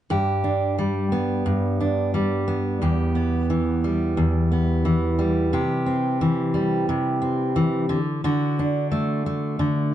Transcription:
steel-string acoustic guitar
0.10 G2 G4
0.44 D4
0.78 G3
1.12 B3
1.46 G2
1.80 D4
2.14 G3
2.48 B3
2.82 E2 G4
3.15 B3
3.50 E3
3.84 G3
4.17 E2
4.52 B3
4.85 E3
5.19 G3
5.53 C3 G4
5.86 C4
6.21 E3
6.54 G3
6.89 C3
7.22 C4
7.56 E3
7.89 D3
8.24 D3 F#4
8.59 D4
8.92 A3
9.26 A3
9.59 D3

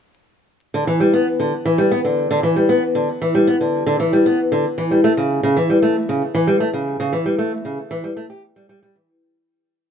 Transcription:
steel-string acoustic guitar
0.74 D3
0.87 E3
1.00 G3
1.13 B3
1.40 D3
1.65 E3
1.78 G3
1.91 B3
2.05 D3
2.31 D3
2.43 E3
2.56 G3
2.69 B3
2.95 D3
3.22 E3
3.35 G3
3.47 B3
3.61 D3
3.86 D3
4.00 E3
4.13 G3
4.26 B3
4.52 D3
4.78 E3
4.91 G3
5.04 A3
5.17 C#3
5.43 C#3
5.57 E3
5.70 G3
5.82 A3
6.09 C#3
6.34 E3
6.47 G3
6.60 A3
6.73 C#3
7.00 C#3
7.13 E3
7.26 G3
7.38 A3
7.65 C#3
7.91 E3
8.04 G3
8.17 A3
8.30 G4
8.56 G3
8.69 G3
8.82 G3
8.96 E3

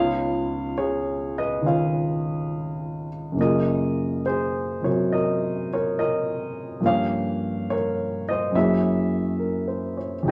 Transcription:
grand piano
Already playing: C#2 C#3 B3 D#4 F4 C#5 F5
0.78 G#4 C#5
1.38 B4 D#5
1.62 D#3 C#4 F4
1.66 C#5 F5
3.32 F#2 C#3
3.37 A#3 F4 A#4 D#5
3.43 G#4
4.26 G#4 C5
4.82 C3 F#3 F#4 A#4 C#5
5.13 A#4 D#5
5.73 A#4 C#5
5.99 A#4 D#5
6.80 G2 F3 A#3 C#4
6.85 G4 C#5 F5
7.70 A#4 C#5
8.29 C5 D#5
8.51 F#2 F#3 A#3 E4 E5
8.57 G#4 C#5
9.39 A#4
9.68 C5
9.97 C#5
10.23 F2 F3 G#3 D#4
10.28 G5

